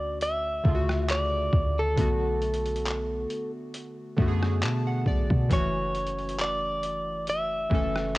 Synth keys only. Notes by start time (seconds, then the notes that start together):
Already playing: D3 A3 C#4 F#4
0.64 C#3 D3 A3
0.68 F4
0.75 F#4
1.96 D3 A3 B3
2.01 F#4
4.17 D3 A3 B3
4.21 F#4
4.28 G#4
4.63 A5
4.87 F#5
5.07 D5
5.49 E3 A3 C#4
5.54 F#4
7.70 E3 A3 C#4
7.74 A4